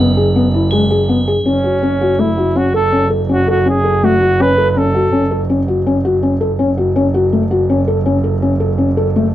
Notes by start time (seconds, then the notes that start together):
Already playing: F#1 B7
0.17 G#4
0.36 B3
0.54 E4
0.71 G#3 G#7
0.91 G#4
1.09 B3
1.28 G#4
1.46 F#1 C#4
1.64 F#4
1.83 C#4
2.01 F#4
2.19 A3 E4
2.37 F#4
2.56 C#4 F#4
2.74 A4
2.92 C#4
3.10 A4
3.29 C#4 F#4
3.48 F#4 A4
3.65 C#4 G#4
3.84 A4
4.03 A3 F#4
4.21 F#4
4.39 C#4 B4
4.58 A4
4.71 B4
4.76 C#4 A4
4.94 F#4
5.12 C#4
5.31 A4
5.50 C#4
5.68 F#4
5.87 C#4
6.05 F#4
6.23 C#4
6.41 A4
6.59 F#1 C#4
6.77 F#4
6.96 C#4
7.14 F#4
7.33 A3
7.51 F#4
7.70 C#4
7.88 A4
8.06 C#4
8.24 A4
8.42 C#4
8.60 A4
8.78 C#4
8.97 A4
9.16 A3